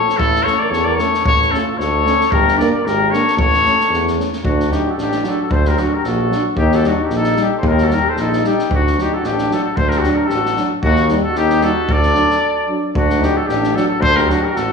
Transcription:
Already playing: flugelhorn A4, trumpet C#5
0.09 snare
0.17 tuba A1, flugelhorn E4, trumpet A4, kick
0.36 snare
0.43 trombone A3, french horn C#4, flugelhorn A4, trumpet C#5, snare
0.59 flugelhorn A#4, trumpet D5
0.70 tuba E2, flugelhorn A4, trumpet C#5, snare
0.84 trumpet D5
0.89 flugelhorn A#4
0.96 trombone A3, french horn C#4, flugelhorn A4, trumpet C#5, snare
1.14 snare
1.24 tuba A1, flugelhorn A4, trumpet C#5, kick
1.42 snare
1.51 trombone A3, french horn C#4, trumpet A4, snare
1.57 flugelhorn F4
1.68 trumpet A4
1.72 flugelhorn F4
1.78 tuba D2, trumpet C#5, snare
1.83 flugelhorn A4
2.04 trombone A3, french horn C#4, snare
2.21 snare
2.31 tuba G1, flugelhorn G4, trumpet A#4, kick
2.48 snare
2.57 trombone A#3, french horn D4, trumpet D5, snare
2.62 flugelhorn A#4
2.72 trumpet D5
2.77 flugelhorn A#4
2.84 tuba G#1, trumpet A#4, snare
2.88 flugelhorn G4
3.11 trombone A#3, french horn D4, trumpet C#5, snare
3.15 flugelhorn A4
3.28 snare
3.37 tuba A1, trumpet C#5, kick
3.45 flugelhorn A4
3.54 snare
3.65 trombone A3, french horn C#4, snare
3.80 snare
3.90 tuba E2, snare
4.07 snare
4.17 trombone A3, french horn C#4, snare
4.33 snare
4.44 tuba D2, flugelhorn D4, trumpet F#4, kick
4.60 snare
4.70 trombone F#3, french horn D4, flugelhorn D#4, trumpet G4, snare
4.87 flugelhorn F#4, trumpet A4
4.97 tuba A1, flugelhorn D4, snare
5.01 trumpet G4
5.12 snare
5.23 trombone F#3, french horn D4, flugelhorn F#4, snare
5.29 trumpet A4
5.42 flugelhorn F#4, trumpet A4
5.50 tuba D2, flugelhorn A4, trumpet C5, kick
5.65 flugelhorn G4, trumpet A#4, snare
5.75 trombone F#3, flugelhorn D4, trumpet F#4, snare
5.79 french horn D4
5.94 flugelhorn G4, trumpet A#4
6.04 tuba A#1, flugelhorn F#4, trumpet A4, snare
6.28 trombone F#3
6.32 french horn D4, snare
6.56 tuba D#2, trumpet G4, kick
6.61 flugelhorn D#4
6.72 flugelhorn F#4, trumpet A4, snare
6.82 trombone G3, french horn D#4, snare
6.87 flugelhorn D4, trumpet F#4
7.00 flugelhorn D#4
7.04 trumpet G4
7.09 tuba A#1, snare
7.14 flugelhorn D#4, trumpet A4
7.24 snare
7.36 trombone G3, french horn D#4, flugelhorn D#4, snare
7.43 trumpet G4
7.55 flugelhorn A4, trumpet C5
7.62 tuba D#2, flugelhorn G4, kick
7.67 trumpet A#4
7.78 flugelhorn F#4, snare
7.84 trumpet A4
7.88 trombone G3, french horn D#4, snare
7.93 flugelhorn G4, trumpet A#4
8.09 flugelhorn A4, trumpet C5
8.16 tuba A#1, flugelhorn D#4, snare
8.21 trumpet A4
8.33 snare
8.42 trombone G3, french horn D#4, snare
8.46 flugelhorn D#4, trumpet G4
8.59 snare
8.69 tuba D2, kick
8.74 flugelhorn D4, trumpet F#4
8.87 snare
8.97 trombone F#3, french horn D4, snare
9.01 flugelhorn D#4, trumpet G4
9.14 flugelhorn F#4, trumpet A4
9.23 tuba A1, trumpet G4, snare
9.30 flugelhorn D4
9.38 snare
9.50 trombone F#3, french horn D4, trumpet A4, snare
9.57 flugelhorn F#4
9.64 trumpet A4
9.72 flugelhorn F#4, trumpet C5
9.77 tuba D2, kick
9.81 flugelhorn A4
9.89 trumpet A#4, snare
9.97 trumpet F#4, flugelhorn G4
10.04 trombone F#3, french horn D4, snare
10.11 flugelhorn D4
10.15 trumpet A#4
10.25 tuba A1, flugelhorn G4, trumpet A4
10.30 snare
10.35 flugelhorn F#4
10.46 snare
10.56 trombone F#3, french horn D4, snare
10.82 tuba D#2, trumpet F#4, kick
10.89 flugelhorn D#4
10.96 snare
11.08 trombone G3, french horn D#4, snare
11.23 trumpet A4
11.29 flugelhorn F#4
11.35 tuba D#2, flugelhorn D#4, trumpet G4, snare
11.50 snare
11.61 trombone G3, french horn D#4, flugelhorn F#4, trumpet A4, snare
11.89 tuba D2, flugelhorn A4, trumpet D5, kick
12.03 snare
12.15 trombone F#3, french horn D4, snare
12.30 snare
12.68 trombone F#3, french horn D4
12.94 tuba D2, flugelhorn D4, trumpet F#4, kick
13.10 snare
13.19 trombone F#3, french horn D4, flugelhorn D#4, snare
13.24 trumpet G4
13.35 flugelhorn F#4, trumpet A4
13.44 flugelhorn D4, trumpet G4
13.48 tuba A1, snare
13.63 snare
13.74 trombone F#3, french horn D4, flugelhorn F#4, trumpet A4, snare
13.87 flugelhorn F#4, trumpet A4
14.00 tuba D2, flugelhorn A4, trumpet C5, kick
14.16 flugelhorn G4, trumpet A#4, snare
14.28 trombone F#3, flugelhorn D4, french horn D4, trumpet F#4, snare
14.41 flugelhorn G4, trumpet A#4
14.52 tuba A1, flugelhorn F#4, snare
14.56 trumpet A4

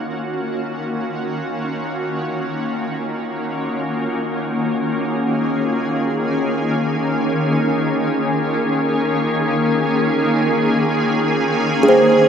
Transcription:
Already playing: ambient pad D#3 A#3 C#4 F4 F#4
4.58 ambient pad G#4
11.42 ambient pad D#3
11.83 kalimba G#4
11.89 kalimba C5
11.93 ambient pad A#3

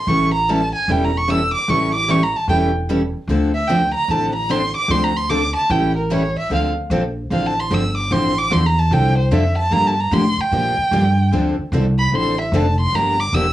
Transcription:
0.07 upright bass A1, steel-string acoustic guitar E3 G3 C#4 E4 A4, violin C#6
0.34 violin A#5
0.49 steel-string acoustic guitar E3 G3 C#4 E4 A4, violin A5
0.75 violin G#5
0.88 upright bass E1, steel-string acoustic guitar E3 G3 C#4 E4 A4, violin G5
1.05 violin A#5
1.18 violin C#6
1.28 steel-string acoustic guitar E3 G3 C#4 E4 A4, violin E6
1.55 violin D6
1.68 upright bass A1, steel-string acoustic guitar E3 G3 C#4 E4 A4, violin C#6
1.95 violin D6
2.09 steel-string acoustic guitar E3 G3 C#4 E4 A4, violin C#6
2.23 violin A#5
2.36 violin A5
2.48 upright bass E1, steel-string acoustic guitar E3 G3 C#4 E4 A4, violin G5
2.89 steel-string acoustic guitar E3 G3 C#4 E4 A4
3.27 upright bass D2, steel-string acoustic guitar D3 F3 C4 D4 A4
3.55 violin E5
3.68 steel-string acoustic guitar D3 F3 C4 D4 A4, violin G5
3.94 violin A#5
4.08 upright bass A1, steel-string acoustic guitar D3 F3 C4 D4 A4, violin A5
4.36 violin A#5
4.50 steel-string acoustic guitar D3 F3 C4 D4 A4, violin C6
4.77 violin D6
4.88 upright bass D2, steel-string acoustic guitar D3 F3 C4 D4 A4, violin C6
5.04 violin A#5
5.17 violin C6
5.30 steel-string acoustic guitar D3 F3 C4 D4 A4, violin D6
5.57 violin A5
5.70 upright bass A1, steel-string acoustic guitar E3 G3 C#4 E4 A4, violin G5
5.97 violin A#4
6.10 steel-string acoustic guitar E3 G3 C#4 E4 A4, violin C#5
6.39 violin E5
6.49 upright bass D2, steel-string acoustic guitar D3 F3 C4 D4 A4, violin F5
6.90 upright bass A#1, steel-string acoustic guitar D3 F3 C4 D4 A4
7.30 upright bass A1, steel-string acoustic guitar D3 F3 C4 D4 A4, violin F5
7.47 violin A5
7.60 violin C6
7.71 upright bass G1, steel-string acoustic guitar D3 F3 C4 D4 A4, violin E6
7.98 violin D6
8.11 upright bass A1, steel-string acoustic guitar D3 F3 C4 D4 A4, violin C6
8.38 violin D6
8.51 upright bass E2, steel-string acoustic guitar D3 F3 C4 D4 A4, violin C6
8.66 violin A#5
8.79 violin A5
8.91 upright bass C2, steel-string acoustic guitar D3 F3 C4 D4 A4, violin G5
9.18 violin C5
9.31 upright bass F2, steel-string acoustic guitar D3 F3 C4 D4 A4, violin E5
9.58 violin A5
9.71 upright bass G2, steel-string acoustic guitar D3 F3 A#3 D4 G4, violin A#5
9.87 violin A5
10.01 violin A#5
10.11 upright bass A2, steel-string acoustic guitar D3 F3 A#3 D4 G4, violin C6
10.37 violin G5, muted upright bass stroke
10.52 upright bass A#2, steel-string acoustic guitar D3 F3 A#3 D4 G4
10.77 muted upright bass stroke
10.91 upright bass G2, steel-string acoustic guitar D3 F3 A#3 D4 G4
11.32 upright bass D2, steel-string acoustic guitar D3 F3 C4 D4 A4
11.58 muted upright bass stroke
11.72 upright bass C2, steel-string acoustic guitar D3 F3 C4 D4 A4
11.99 violin B5
12.12 upright bass A1, steel-string acoustic guitar D3 F3 C4 D4 A4, violin C6
12.41 violin E5
12.52 upright bass F1, steel-string acoustic guitar D3 F3 C4 D4 A4
12.56 violin A5
12.81 violin C6
12.92 upright bass G1, steel-string acoustic guitar D3 F3 A#3 D4 G4, violin A#5
13.20 violin D6
13.33 upright bass E1, steel-string acoustic guitar D3 F3 A#3 D4 G4, violin E6

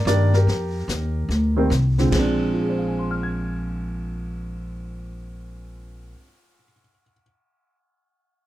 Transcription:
0.05 upright bass G2, grand piano D#3 G3 A#3 D4 A#4 D5, snare, hi-hat pedal
0.34 grand piano G4 A#4, snare
0.47 upright bass F2, brush sweep, snare
0.88 upright bass D#2, snare, hi-hat pedal
1.29 upright bass D2, brush sweep, snare
1.57 grand piano D#3 G3 A#3 C4
1.70 upright bass C2, snare, hi-hat pedal
1.98 grand piano D3 F3 G#3 C4, snare
2.07 grand piano A#2 G#3
2.12 upright bass A#1, grand piano C4, kick, snare, ride bell
2.19 grand piano D4
2.54 grand piano F4
2.61 grand piano G#4
2.69 grand piano C5
2.79 grand piano F5
2.88 grand piano G#5
2.99 grand piano C6
3.11 grand piano F6
3.23 grand piano G#6

